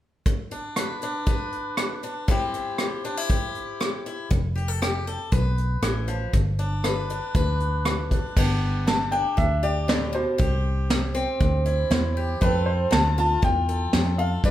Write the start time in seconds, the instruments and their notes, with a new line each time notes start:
0.26 steel-string acoustic guitar G2, kick, closed hi-hat
0.51 steel-string acoustic guitar D4, closed hi-hat
0.76 steel-string acoustic guitar G3 B4, cross-stick, closed hi-hat
1.01 steel-string acoustic guitar D4, closed hi-hat
1.26 steel-string acoustic guitar D3 B4, kick, closed hi-hat
1.52 closed hi-hat
1.77 steel-string acoustic guitar G3, cross-stick, closed hi-hat
2.03 steel-string acoustic guitar D4, closed hi-hat
2.28 steel-string acoustic guitar C3 G3 C4 E4 G4, kick, closed hi-hat
2.54 steel-string acoustic guitar E4, closed hi-hat
2.78 steel-string acoustic guitar G3 G4, cross-stick, closed hi-hat
3.04 steel-string acoustic guitar D4, closed hi-hat
3.17 steel-string acoustic guitar E4
3.29 steel-string acoustic guitar G2 G4, kick, closed hi-hat
3.55 closed hi-hat
3.80 steel-string acoustic guitar G3, cross-stick, closed hi-hat
4.06 steel-string acoustic guitar E4, closed hi-hat
4.31 fingered electric bass F1, steel-string acoustic guitar F3, kick, closed hi-hat
4.55 steel-string acoustic guitar G4, closed hi-hat
4.68 steel-string acoustic guitar A4
4.82 steel-string acoustic guitar C4 G4, cross-stick, closed hi-hat
5.07 steel-string acoustic guitar A4, closed hi-hat
5.32 fingered electric bass B1, steel-string acoustic guitar C3 B4, kick, closed hi-hat
5.58 closed hi-hat
5.82 fingered electric bass A1, steel-string acoustic guitar E3, cross-stick, closed hi-hat
6.08 steel-string acoustic guitar F3, closed hi-hat
6.33 fingered electric bass G1, steel-string acoustic guitar G2, kick, closed hi-hat
6.59 steel-string acoustic guitar D4, closed hi-hat
6.84 steel-string acoustic guitar G3 B4, cross-stick, closed hi-hat
7.09 steel-string acoustic guitar D4, closed hi-hat
7.34 fingered electric bass D2, steel-string acoustic guitar D3 B4, kick, closed hi-hat
7.60 closed hi-hat
7.85 steel-string acoustic guitar G3, cross-stick, closed hi-hat
8.11 steel-string acoustic guitar D4, kick, closed hi-hat
8.37 fingered electric bass G1, steel-string acoustic guitar G2 B3 D4 G4, kick, crash
8.87 steel-string acoustic guitar B3, upright piano A5, snare, closed hi-hat
9.12 steel-string acoustic guitar D4, upright piano G5, closed hi-hat
9.37 fingered electric bass D2, steel-string acoustic guitar G2, upright piano E5, kick, closed hi-hat
9.63 steel-string acoustic guitar G4, upright piano D5, closed hi-hat
9.88 steel-string acoustic guitar A2, upright piano D5, snare, closed hi-hat
10.13 steel-string acoustic guitar B2, upright piano C5
10.38 fingered electric bass C2, steel-string acoustic guitar C3 G4, kick, closed hi-hat
10.90 steel-string acoustic guitar G3, snare, closed hi-hat
11.15 steel-string acoustic guitar C4, closed hi-hat
11.40 fingered electric bass D2, steel-string acoustic guitar G2, kick, closed hi-hat
11.66 steel-string acoustic guitar E4, closed hi-hat
11.91 fingered electric bass E2, steel-string acoustic guitar G3, snare, closed hi-hat
12.17 steel-string acoustic guitar G4
12.41 fingered electric bass F2, steel-string acoustic guitar F3 C4 F4 A4, upright piano B4, kick, closed hi-hat
12.66 upright piano C5
12.91 fingered electric bass D2, steel-string acoustic guitar C4, upright piano A5, snare, closed hi-hat
13.18 steel-string acoustic guitar F4, upright piano A5, closed hi-hat
13.42 fingered electric bass E2, steel-string acoustic guitar C3, upright piano G5, kick, closed hi-hat
13.69 steel-string acoustic guitar A4, closed hi-hat
13.93 fingered electric bass F2, steel-string acoustic guitar C4, snare, closed hi-hat
14.18 steel-string acoustic guitar A4, upright piano F5
14.44 fingered electric bass G2, steel-string acoustic guitar G2 B4, upright piano D5, kick, closed hi-hat